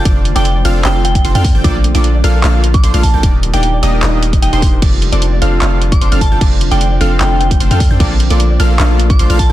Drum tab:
CC |----------------|----------------|----------------|x---------------|
HH |x-xxx-x-x-xxxxo-|x-xxx-x-x-xxxxo-|x-xxx-x-x-xxxxo-|x-xxx-x-x-xxxxo-|
CP |--------x-------|--------x-------|--------x-------|--------x-------|
BD |o----------o--o-|o----------o--o-|o----------o--o-|o----------o--o-|

CC |x---------------|x---------------|
HH |x-xxx-x-x-xxxxo-|x-xxx-x-x-xxxxo-|
CP |--------x-------|--------x-------|
BD |o----------o--o-|o----------o--o-|